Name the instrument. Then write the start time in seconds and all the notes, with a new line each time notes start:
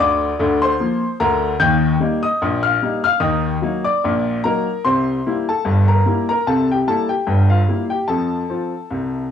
upright piano
0.00 D2 D3 D5 D6
0.39 D2 D3
0.62 C5 C6
0.80 F3 A#3 F4
1.20 D2 D3 A#4 A#5
1.60 D#2 D#3 G5 G6
2.00 G3 A#3 D#4
2.23 D#5 D#6
2.42 A#1 A#2
2.63 F5 F6
2.83 G3 A#3 D#4
3.04 F5 F6
3.20 D#2 D#3 D#5 D#6
3.62 F#3 A#3 D#4
3.85 D5 D6
4.04 A#1 A#2
4.44 F#3 A#3 D#4 A#4 A#5
4.85 C2 C3 C5 C6
5.27 G3 A#3 E4
5.49 A4 A5
5.65 G1 G2
5.88 A#4 A#5
6.06 G3 A#3 E4
6.29 A#4 A#5
6.47 C2 C3 A4 A5
6.71 G4 G5
6.87 G3 A#3 E4 A4 A5
7.09 G4 G5
7.27 G1 G2
7.50 F4 F5
7.68 G3 A#3 E4
7.90 G4 G5
8.08 F2 F3 A4 A5
8.49 F3 C4 F4
8.90 C2 C3